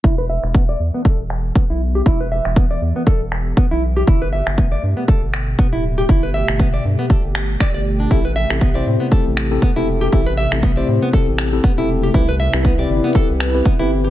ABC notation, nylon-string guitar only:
X:1
M:4/4
L:1/16
Q:"Swing 16ths" 1/4=119
K:Em
V:1 name="Nylon-string guitar"
E B e z B, d z B, A z3 B, E z G | E B e z B, d z B, A z3 B, E z G | E B e z B, d z B, A z3 B, E z G | E B e z B, d z B, A z3 d d z D |
E B e z B, d z B, A z3 B, E z G | E B e z B, d z B, A z3 B, E z G | E B e z B, d z B, A z3 B, E z G |]